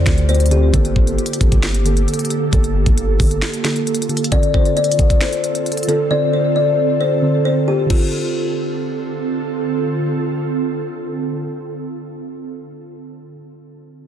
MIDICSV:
0, 0, Header, 1, 6, 480
1, 0, Start_track
1, 0, Key_signature, -1, "minor"
1, 0, Tempo, 447761
1, 789, Time_signature, 4, 2, 24, 8
1, 15085, End_track
2, 0, Start_track
2, 0, Title_t, "Kalimba"
2, 0, Program_c, 0, 108
2, 0, Note_on_c, 0, 72, 77
2, 281, Note_off_c, 0, 72, 0
2, 309, Note_on_c, 0, 72, 96
2, 493, Note_off_c, 0, 72, 0
2, 550, Note_on_c, 0, 67, 79
2, 733, Note_off_c, 0, 67, 0
2, 4631, Note_on_c, 0, 74, 92
2, 4814, Note_off_c, 0, 74, 0
2, 4869, Note_on_c, 0, 72, 81
2, 5053, Note_off_c, 0, 72, 0
2, 5111, Note_on_c, 0, 74, 79
2, 5561, Note_off_c, 0, 74, 0
2, 5589, Note_on_c, 0, 72, 88
2, 6266, Note_off_c, 0, 72, 0
2, 6309, Note_on_c, 0, 69, 73
2, 6493, Note_off_c, 0, 69, 0
2, 6547, Note_on_c, 0, 74, 96
2, 6731, Note_off_c, 0, 74, 0
2, 6790, Note_on_c, 0, 72, 75
2, 6973, Note_off_c, 0, 72, 0
2, 7030, Note_on_c, 0, 74, 78
2, 7481, Note_off_c, 0, 74, 0
2, 7510, Note_on_c, 0, 72, 88
2, 7961, Note_off_c, 0, 72, 0
2, 7990, Note_on_c, 0, 72, 86
2, 8173, Note_off_c, 0, 72, 0
2, 8231, Note_on_c, 0, 67, 80
2, 8414, Note_off_c, 0, 67, 0
2, 8471, Note_on_c, 0, 65, 82
2, 9867, Note_off_c, 0, 65, 0
2, 15085, End_track
3, 0, Start_track
3, 0, Title_t, "Ambient pad"
3, 0, Program_c, 1, 92
3, 0, Note_on_c, 1, 50, 86
3, 0, Note_on_c, 1, 60, 78
3, 0, Note_on_c, 1, 65, 76
3, 0, Note_on_c, 1, 67, 93
3, 746, Note_off_c, 1, 50, 0
3, 751, Note_off_c, 1, 60, 0
3, 751, Note_off_c, 1, 65, 0
3, 770, Note_off_c, 1, 67, 0
3, 789, Note_on_c, 1, 58, 80
3, 789, Note_on_c, 1, 69, 96
3, 790, Note_on_c, 1, 50, 82
3, 790, Note_on_c, 1, 67, 77
3, 2690, Note_off_c, 1, 67, 0
3, 2710, Note_on_c, 1, 65, 78
3, 4591, Note_off_c, 1, 50, 0
3, 4591, Note_off_c, 1, 58, 0
3, 4591, Note_off_c, 1, 69, 0
3, 4610, Note_off_c, 1, 65, 0
3, 4630, Note_on_c, 1, 50, 84
3, 4630, Note_on_c, 1, 60, 76
3, 4630, Note_on_c, 1, 65, 76
3, 4630, Note_on_c, 1, 69, 92
3, 8431, Note_off_c, 1, 50, 0
3, 8431, Note_off_c, 1, 60, 0
3, 8431, Note_off_c, 1, 65, 0
3, 8431, Note_off_c, 1, 69, 0
3, 8469, Note_on_c, 1, 50, 84
3, 8469, Note_on_c, 1, 60, 73
3, 8469, Note_on_c, 1, 65, 76
3, 8469, Note_on_c, 1, 69, 89
3, 13124, Note_off_c, 1, 50, 0
3, 13124, Note_off_c, 1, 60, 0
3, 13124, Note_off_c, 1, 65, 0
3, 13124, Note_off_c, 1, 69, 0
3, 15085, End_track
4, 0, Start_track
4, 0, Title_t, "Synth keys"
4, 0, Program_c, 2, 88
4, 0, Control_c, 2, 64, 127
4, 0, Note_on_c, 2, 50, 78
4, 0, Note_on_c, 2, 60, 75
4, 0, Note_on_c, 2, 65, 74
4, 0, Note_on_c, 2, 69, 86
4, 53, Note_off_c, 2, 50, 0
4, 53, Note_on_c, 2, 50, 80
4, 60, Note_off_c, 2, 60, 0
4, 60, Note_on_c, 2, 60, 73
4, 68, Note_off_c, 2, 65, 0
4, 68, Note_on_c, 2, 65, 68
4, 75, Note_off_c, 2, 69, 0
4, 75, Note_on_c, 2, 69, 90
4, 458, Note_off_c, 2, 50, 0
4, 461, Note_off_c, 2, 60, 0
4, 465, Note_off_c, 2, 65, 0
4, 468, Note_off_c, 2, 69, 0
4, 537, Note_on_c, 2, 50, 74
4, 544, Note_on_c, 2, 60, 66
4, 551, Note_on_c, 2, 65, 59
4, 558, Note_on_c, 2, 69, 76
4, 741, Note_off_c, 2, 50, 0
4, 745, Note_off_c, 2, 60, 0
4, 748, Note_off_c, 2, 65, 0
4, 752, Note_off_c, 2, 69, 0
4, 779, Note_on_c, 2, 50, 104
4, 786, Note_on_c, 2, 58, 88
4, 794, Note_on_c, 2, 67, 81
4, 801, Note_on_c, 2, 69, 107
4, 802, Control_c, 2, 64, 0
4, 1002, Control_c, 2, 64, 127
4, 1081, Note_off_c, 2, 50, 0
4, 1085, Note_off_c, 2, 58, 0
4, 1089, Note_off_c, 2, 67, 0
4, 1092, Note_off_c, 2, 69, 0
4, 1144, Note_on_c, 2, 50, 68
4, 1150, Note_on_c, 2, 58, 68
4, 1158, Note_on_c, 2, 67, 65
4, 1165, Note_on_c, 2, 69, 75
4, 1444, Note_off_c, 2, 50, 0
4, 1447, Note_off_c, 2, 58, 0
4, 1451, Note_off_c, 2, 67, 0
4, 1454, Note_off_c, 2, 69, 0
4, 1504, Note_on_c, 2, 50, 80
4, 1511, Note_on_c, 2, 58, 71
4, 1519, Note_on_c, 2, 67, 64
4, 1526, Note_on_c, 2, 69, 86
4, 1903, Note_off_c, 2, 50, 0
4, 1907, Note_off_c, 2, 58, 0
4, 1910, Note_off_c, 2, 67, 0
4, 1914, Note_off_c, 2, 69, 0
4, 1977, Note_on_c, 2, 50, 78
4, 1984, Note_on_c, 2, 58, 71
4, 1991, Note_on_c, 2, 67, 73
4, 1999, Note_on_c, 2, 69, 91
4, 2578, Note_off_c, 2, 50, 0
4, 2581, Note_off_c, 2, 58, 0
4, 2585, Note_off_c, 2, 67, 0
4, 2589, Note_off_c, 2, 69, 0
4, 2702, Note_on_c, 2, 50, 90
4, 2709, Note_on_c, 2, 58, 88
4, 2716, Note_on_c, 2, 67, 91
4, 2723, Note_on_c, 2, 69, 114
4, 3300, Note_off_c, 2, 50, 0
4, 3304, Note_off_c, 2, 58, 0
4, 3307, Note_off_c, 2, 67, 0
4, 3311, Note_off_c, 2, 69, 0
4, 3423, Note_on_c, 2, 50, 71
4, 3431, Note_on_c, 2, 58, 69
4, 3438, Note_on_c, 2, 67, 66
4, 3445, Note_on_c, 2, 69, 81
4, 3823, Note_off_c, 2, 50, 0
4, 3826, Note_off_c, 2, 58, 0
4, 3830, Note_off_c, 2, 67, 0
4, 3833, Note_off_c, 2, 69, 0
4, 3897, Note_on_c, 2, 50, 76
4, 3905, Note_on_c, 2, 58, 74
4, 3912, Note_on_c, 2, 67, 70
4, 3919, Note_on_c, 2, 69, 82
4, 4300, Note_off_c, 2, 50, 0
4, 4303, Note_off_c, 2, 58, 0
4, 4307, Note_off_c, 2, 67, 0
4, 4311, Note_off_c, 2, 69, 0
4, 4379, Note_on_c, 2, 50, 76
4, 4387, Note_on_c, 2, 58, 62
4, 4393, Note_on_c, 2, 67, 66
4, 4401, Note_on_c, 2, 69, 80
4, 4582, Note_off_c, 2, 50, 0
4, 4586, Note_off_c, 2, 58, 0
4, 4590, Note_off_c, 2, 67, 0
4, 4593, Note_off_c, 2, 69, 0
4, 4622, Note_on_c, 2, 50, 97
4, 4629, Note_on_c, 2, 60, 88
4, 4637, Note_on_c, 2, 65, 94
4, 4641, Control_c, 2, 64, 0
4, 4644, Note_on_c, 2, 69, 101
4, 4812, Control_c, 2, 64, 127
4, 5220, Note_off_c, 2, 50, 0
4, 5224, Note_off_c, 2, 60, 0
4, 5228, Note_off_c, 2, 65, 0
4, 5231, Note_off_c, 2, 69, 0
4, 5331, Note_on_c, 2, 50, 65
4, 5338, Note_on_c, 2, 60, 65
4, 5346, Note_on_c, 2, 65, 65
4, 5353, Note_on_c, 2, 69, 82
4, 6133, Note_off_c, 2, 50, 0
4, 6136, Note_off_c, 2, 60, 0
4, 6140, Note_off_c, 2, 65, 0
4, 6144, Note_off_c, 2, 69, 0
4, 6295, Note_on_c, 2, 50, 77
4, 6302, Note_on_c, 2, 60, 67
4, 6309, Note_on_c, 2, 65, 68
4, 6316, Note_on_c, 2, 69, 85
4, 6500, Note_off_c, 2, 50, 0
4, 6504, Note_off_c, 2, 60, 0
4, 6507, Note_off_c, 2, 65, 0
4, 6511, Note_off_c, 2, 69, 0
4, 6540, Note_on_c, 2, 50, 97
4, 6547, Note_on_c, 2, 60, 91
4, 6554, Note_on_c, 2, 65, 82
4, 6561, Note_on_c, 2, 72, 105
4, 7337, Note_off_c, 2, 50, 0
4, 7341, Note_off_c, 2, 60, 0
4, 7344, Note_off_c, 2, 65, 0
4, 7348, Note_off_c, 2, 72, 0
4, 7737, Note_on_c, 2, 50, 74
4, 7744, Note_on_c, 2, 60, 72
4, 7751, Note_on_c, 2, 65, 70
4, 7759, Note_on_c, 2, 69, 79
4, 8338, Note_off_c, 2, 50, 0
4, 8341, Note_off_c, 2, 60, 0
4, 8345, Note_off_c, 2, 65, 0
4, 8349, Note_off_c, 2, 69, 0
4, 8426, Note_on_c, 2, 50, 80
4, 8455, Note_on_c, 2, 60, 72
4, 8481, Control_c, 2, 64, 0
4, 8484, Note_on_c, 2, 65, 74
4, 8513, Note_on_c, 2, 69, 89
4, 8655, Control_c, 2, 64, 127
4, 13128, Note_off_c, 2, 50, 0
4, 13157, Note_off_c, 2, 60, 0
4, 13186, Note_off_c, 2, 65, 0
4, 13215, Note_off_c, 2, 69, 0
4, 15003, Control_c, 2, 64, 0
4, 15085, End_track
5, 0, Start_track
5, 0, Title_t, "808-style bass"
5, 0, Program_c, 3, 38
5, 69, Note_on_c, 3, 38, 105
5, 760, Note_off_c, 3, 38, 0
5, 789, Note_on_c, 3, 31, 109
5, 1020, Note_off_c, 3, 31, 0
5, 1029, Note_on_c, 3, 31, 108
5, 1259, Note_off_c, 3, 31, 0
5, 1509, Note_on_c, 3, 31, 107
5, 1622, Note_off_c, 3, 31, 0
5, 1629, Note_on_c, 3, 31, 105
5, 2205, Note_off_c, 3, 31, 0
5, 2710, Note_on_c, 3, 31, 110
5, 3055, Note_off_c, 3, 31, 0
5, 3069, Note_on_c, 3, 31, 100
5, 3415, Note_off_c, 3, 31, 0
5, 3429, Note_on_c, 3, 31, 105
5, 3659, Note_off_c, 3, 31, 0
5, 15085, End_track
6, 0, Start_track
6, 0, Title_t, "Drums"
6, 68, Note_on_c, 9, 26, 77
6, 68, Note_on_c, 9, 36, 98
6, 69, Note_on_c, 9, 38, 94
6, 69, Note_on_c, 9, 42, 83
6, 175, Note_off_c, 9, 26, 0
6, 176, Note_off_c, 9, 36, 0
6, 176, Note_off_c, 9, 38, 0
6, 176, Note_off_c, 9, 42, 0
6, 189, Note_on_c, 9, 42, 55
6, 297, Note_off_c, 9, 42, 0
6, 309, Note_on_c, 9, 42, 49
6, 369, Note_off_c, 9, 42, 0
6, 369, Note_on_c, 9, 42, 58
6, 429, Note_off_c, 9, 42, 0
6, 429, Note_on_c, 9, 42, 66
6, 490, Note_off_c, 9, 42, 0
6, 490, Note_on_c, 9, 42, 79
6, 550, Note_off_c, 9, 42, 0
6, 550, Note_on_c, 9, 42, 81
6, 657, Note_off_c, 9, 42, 0
6, 789, Note_on_c, 9, 36, 114
6, 790, Note_on_c, 9, 42, 84
6, 897, Note_off_c, 9, 36, 0
6, 897, Note_off_c, 9, 42, 0
6, 910, Note_on_c, 9, 42, 63
6, 1017, Note_off_c, 9, 42, 0
6, 1029, Note_on_c, 9, 36, 92
6, 1136, Note_off_c, 9, 36, 0
6, 1150, Note_on_c, 9, 42, 50
6, 1257, Note_off_c, 9, 42, 0
6, 1270, Note_on_c, 9, 42, 48
6, 1350, Note_off_c, 9, 42, 0
6, 1350, Note_on_c, 9, 42, 66
6, 1430, Note_off_c, 9, 42, 0
6, 1430, Note_on_c, 9, 42, 78
6, 1509, Note_on_c, 9, 36, 103
6, 1510, Note_off_c, 9, 42, 0
6, 1510, Note_on_c, 9, 42, 86
6, 1616, Note_off_c, 9, 36, 0
6, 1617, Note_off_c, 9, 42, 0
6, 1629, Note_on_c, 9, 36, 92
6, 1630, Note_on_c, 9, 42, 59
6, 1736, Note_off_c, 9, 36, 0
6, 1737, Note_off_c, 9, 42, 0
6, 1748, Note_on_c, 9, 26, 85
6, 1749, Note_on_c, 9, 38, 108
6, 1750, Note_on_c, 9, 42, 81
6, 1855, Note_off_c, 9, 26, 0
6, 1856, Note_off_c, 9, 38, 0
6, 1857, Note_off_c, 9, 42, 0
6, 1869, Note_on_c, 9, 42, 72
6, 1977, Note_off_c, 9, 42, 0
6, 1989, Note_on_c, 9, 42, 83
6, 2097, Note_off_c, 9, 42, 0
6, 2109, Note_on_c, 9, 42, 53
6, 2216, Note_off_c, 9, 42, 0
6, 2229, Note_on_c, 9, 42, 48
6, 2290, Note_off_c, 9, 42, 0
6, 2290, Note_on_c, 9, 42, 59
6, 2349, Note_off_c, 9, 42, 0
6, 2349, Note_on_c, 9, 42, 67
6, 2410, Note_off_c, 9, 42, 0
6, 2410, Note_on_c, 9, 42, 78
6, 2470, Note_off_c, 9, 42, 0
6, 2470, Note_on_c, 9, 42, 76
6, 2577, Note_off_c, 9, 42, 0
6, 2710, Note_on_c, 9, 36, 119
6, 2710, Note_on_c, 9, 42, 87
6, 2817, Note_off_c, 9, 36, 0
6, 2817, Note_off_c, 9, 42, 0
6, 2830, Note_on_c, 9, 42, 65
6, 2937, Note_off_c, 9, 42, 0
6, 3069, Note_on_c, 9, 36, 96
6, 3069, Note_on_c, 9, 42, 50
6, 3176, Note_off_c, 9, 36, 0
6, 3177, Note_off_c, 9, 42, 0
6, 3189, Note_on_c, 9, 42, 77
6, 3296, Note_off_c, 9, 42, 0
6, 3429, Note_on_c, 9, 36, 102
6, 3429, Note_on_c, 9, 46, 90
6, 3536, Note_off_c, 9, 36, 0
6, 3536, Note_off_c, 9, 46, 0
6, 3549, Note_on_c, 9, 42, 60
6, 3656, Note_off_c, 9, 42, 0
6, 3667, Note_on_c, 9, 26, 87
6, 3668, Note_on_c, 9, 38, 108
6, 3669, Note_on_c, 9, 42, 78
6, 3774, Note_off_c, 9, 26, 0
6, 3775, Note_off_c, 9, 38, 0
6, 3776, Note_off_c, 9, 42, 0
6, 3789, Note_on_c, 9, 42, 72
6, 3896, Note_off_c, 9, 42, 0
6, 3908, Note_on_c, 9, 26, 75
6, 3909, Note_on_c, 9, 38, 97
6, 3909, Note_on_c, 9, 42, 83
6, 4015, Note_off_c, 9, 26, 0
6, 4016, Note_off_c, 9, 38, 0
6, 4016, Note_off_c, 9, 42, 0
6, 4029, Note_on_c, 9, 42, 53
6, 4136, Note_off_c, 9, 42, 0
6, 4149, Note_on_c, 9, 42, 68
6, 4229, Note_off_c, 9, 42, 0
6, 4229, Note_on_c, 9, 42, 67
6, 4308, Note_off_c, 9, 42, 0
6, 4308, Note_on_c, 9, 42, 65
6, 4389, Note_off_c, 9, 42, 0
6, 4389, Note_on_c, 9, 42, 48
6, 4469, Note_off_c, 9, 42, 0
6, 4469, Note_on_c, 9, 42, 64
6, 4549, Note_off_c, 9, 42, 0
6, 4549, Note_on_c, 9, 42, 81
6, 4629, Note_off_c, 9, 42, 0
6, 4629, Note_on_c, 9, 36, 115
6, 4629, Note_on_c, 9, 42, 86
6, 4736, Note_off_c, 9, 42, 0
6, 4737, Note_off_c, 9, 36, 0
6, 4749, Note_on_c, 9, 42, 65
6, 4856, Note_off_c, 9, 42, 0
6, 4869, Note_on_c, 9, 36, 89
6, 4976, Note_off_c, 9, 36, 0
6, 4989, Note_on_c, 9, 42, 47
6, 5097, Note_off_c, 9, 42, 0
6, 5109, Note_on_c, 9, 42, 49
6, 5190, Note_off_c, 9, 42, 0
6, 5190, Note_on_c, 9, 42, 62
6, 5269, Note_off_c, 9, 42, 0
6, 5269, Note_on_c, 9, 42, 82
6, 5349, Note_off_c, 9, 42, 0
6, 5349, Note_on_c, 9, 36, 100
6, 5349, Note_on_c, 9, 42, 89
6, 5456, Note_off_c, 9, 36, 0
6, 5456, Note_off_c, 9, 42, 0
6, 5468, Note_on_c, 9, 36, 92
6, 5468, Note_on_c, 9, 42, 59
6, 5576, Note_off_c, 9, 36, 0
6, 5576, Note_off_c, 9, 42, 0
6, 5587, Note_on_c, 9, 26, 82
6, 5588, Note_on_c, 9, 38, 105
6, 5588, Note_on_c, 9, 42, 75
6, 5694, Note_off_c, 9, 26, 0
6, 5695, Note_off_c, 9, 38, 0
6, 5696, Note_off_c, 9, 42, 0
6, 5709, Note_on_c, 9, 42, 71
6, 5816, Note_off_c, 9, 42, 0
6, 5829, Note_on_c, 9, 42, 80
6, 5936, Note_off_c, 9, 42, 0
6, 5949, Note_on_c, 9, 42, 53
6, 6056, Note_off_c, 9, 42, 0
6, 6070, Note_on_c, 9, 42, 49
6, 6129, Note_off_c, 9, 42, 0
6, 6129, Note_on_c, 9, 42, 58
6, 6190, Note_off_c, 9, 42, 0
6, 6190, Note_on_c, 9, 42, 67
6, 6250, Note_off_c, 9, 42, 0
6, 6250, Note_on_c, 9, 42, 80
6, 6309, Note_off_c, 9, 42, 0
6, 6309, Note_on_c, 9, 42, 77
6, 6417, Note_off_c, 9, 42, 0
6, 8470, Note_on_c, 9, 36, 106
6, 8470, Note_on_c, 9, 49, 87
6, 8577, Note_off_c, 9, 36, 0
6, 8577, Note_off_c, 9, 49, 0
6, 15085, End_track
0, 0, End_of_file